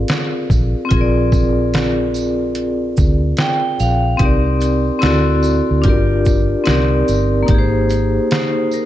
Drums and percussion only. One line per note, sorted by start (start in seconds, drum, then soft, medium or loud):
0.08 snare loud
0.08 closed hi-hat medium
0.50 kick medium
0.50 tambourine medium
0.50 shaker medium
0.91 kick loud
0.91 closed hi-hat medium
1.32 kick medium
1.32 tambourine soft
1.32 shaker soft
1.74 snare loud
1.74 closed hi-hat medium
2.14 tambourine medium
2.14 shaker soft
2.55 closed hi-hat medium
2.97 kick medium
2.97 tambourine soft
2.97 shaker soft
3.37 snare loud
3.37 closed hi-hat medium
3.79 tambourine medium
3.79 shaker soft
4.19 kick medium
4.19 closed hi-hat medium
4.60 closed hi-hat soft
4.60 tambourine soft
4.60 shaker soft
5.02 snare loud
5.02 closed hi-hat medium
5.43 tambourine medium
5.43 shaker soft
5.84 kick medium
5.84 closed hi-hat medium
6.25 kick medium
6.25 tambourine soft
6.25 shaker soft
6.66 snare loud
6.66 closed hi-hat medium
7.08 tambourine medium
7.08 shaker soft
7.48 kick medium
7.48 closed hi-hat medium
7.89 closed hi-hat soft
7.89 tambourine soft
7.89 shaker soft
8.31 snare loud
8.31 closed hi-hat medium
8.71 tambourine medium
8.71 shaker soft